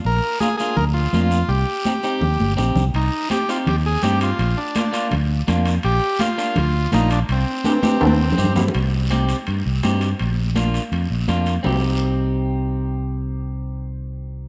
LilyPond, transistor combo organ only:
\new Staff \with { instrumentName = "Transistor combo organ" } { \time 4/4 \key c \minor \tempo 4 = 166 bes'4 aes'8 aes'8 bes'8 f'4. | g'2. r4 | ees'4 g'8 f'8 g'8 aes'8 g'8 f'8~ | f'8 d'4. r2 |
g'4 f'4 f'4 ees'8 d'8 | c'2.~ c'8 r8 | r1 | r1 |
r1 | r1 | }